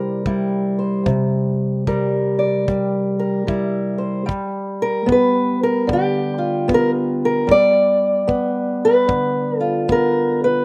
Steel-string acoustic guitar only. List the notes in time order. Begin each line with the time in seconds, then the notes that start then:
Already playing: C3 G3 E4 A#4 C5
0.27 G3 E4
0.79 C5
1.06 C3
1.88 G3 A#4
2.39 D5
2.68 G3
3.19 A#4
3.47 G3 E4
3.98 C5
4.26 G3
4.82 A#4
5.06 B3
5.12 B4
5.63 A#4
5.87 D3
5.93 G4
6.38 F4
6.68 B3
6.74 A#4
7.25 A#4
7.47 G3
7.51 D5
8.27 B3
8.85 B4
9.08 D3
9.58 F4 A4
9.88 B3 A#4
10.44 B4